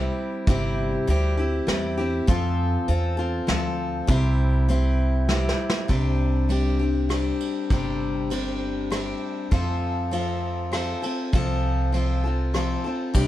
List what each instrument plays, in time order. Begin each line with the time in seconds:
Already playing: steel-string acoustic guitar G3 C4 E4 G4
0.47 upright bass G1, steel-string acoustic guitar C3 G3 C4 E4 G4, kick, closed hi-hat
1.07 upright bass D2, steel-string acoustic guitar G3 C4 E4 G4, closed hi-hat
1.37 steel-string acoustic guitar C4 E4 G4
1.67 upright bass E2, steel-string acoustic guitar G3 C4 E4 G4, snare, closed hi-hat
1.98 steel-string acoustic guitar C4 E4 G4
2.27 upright bass F2, steel-string acoustic guitar F3 C4 F4 A4, kick, closed hi-hat
2.88 upright bass E2, steel-string acoustic guitar C4 F4 A4, closed hi-hat
3.17 steel-string acoustic guitar C4 F4 A4
3.47 upright bass D2, steel-string acoustic guitar F3 C4 F4 A4, snare, closed hi-hat
4.07 upright bass C2, steel-string acoustic guitar C3 G3 C4 E4 G4, kick, closed hi-hat
4.68 steel-string acoustic guitar G3 C4 E4 G4, closed hi-hat
5.29 steel-string acoustic guitar G3 C4 E4 G4, snare
5.49 snare
5.70 snare
5.88 upright bass C2, steel-string acoustic guitar C3 G3 C4 D4 G4, kick, ride
6.49 steel-string acoustic guitar G3 C4 D4 G4, ride
6.79 steel-string acoustic guitar C4 D4 G4
7.09 steel-string acoustic guitar G3 C4 D4 G4, cross-stick, ride
7.40 ride
7.70 upright bass G1, steel-string acoustic guitar C3 G3 C4 D4 G4, kick, ride
8.30 steel-string acoustic guitar G3 C4 D4 G4, ride
8.90 steel-string acoustic guitar G3 C4 D4 G4, cross-stick, ride
9.51 upright bass F2, steel-string acoustic guitar F3 C4 F4 A4, kick, ride
10.11 steel-string acoustic guitar F3 C4 F4 A4, ride
10.72 steel-string acoustic guitar F3 C4 F4 A4, cross-stick, ride
11.02 steel-string acoustic guitar C4 F4 A4, ride
11.33 upright bass C2, steel-string acoustic guitar F3 C4 F4 A4, kick, ride
11.92 steel-string acoustic guitar F3 C4 F4 A4, ride
12.24 steel-string acoustic guitar C4 F4 A4
12.54 steel-string acoustic guitar F3 C4 F4 A4, cross-stick, ride
12.84 steel-string acoustic guitar C4 F4 A4
13.14 upright bass C2, steel-string acoustic guitar C3 G3 C4 D4 G4, kick, crash